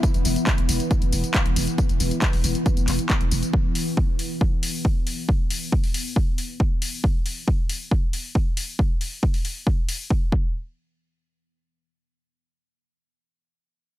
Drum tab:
HH |xxoxxxoxxxoxxxox|xxoxxooxxxoxxxox|--o---o---o---o-|--o--oo---o---o-|
TB |xxxxx-xxxxxxx-xx|xxxxx-xxxxxxx-xx|----------------|----------------|
CP |----x-------x---|----x-----x-x---|----------------|----------------|
BD |o---o---o---o---|o---o---o---o---|o---o---o---o---|o---o---o---o---|

HH |--o---o---o---o-|--o--oo---o-----|----------------|----------------|
TB |----------------|----------------|----------------|----------------|
CP |----------------|----------------|----------------|----------------|
BD |o---o---o---o---|o---o---o---o-o-|----------------|----------------|